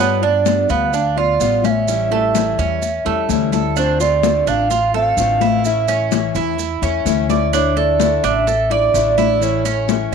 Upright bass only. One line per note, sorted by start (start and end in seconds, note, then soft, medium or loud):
0.00 0.63 G2 medium
0.69 1.36 D2 medium
1.40 2.52 A1 medium
2.58 3.02 E2 medium
3.06 3.28 E2 medium
3.29 4.40 D2 medium
4.46 5.13 A1 medium
5.17 6.29 A1 medium
6.35 6.79 E2 medium
6.82 7.04 E2 medium
7.05 8.17 D2 medium
8.23 8.90 A1 medium
8.94 10.06 A1 medium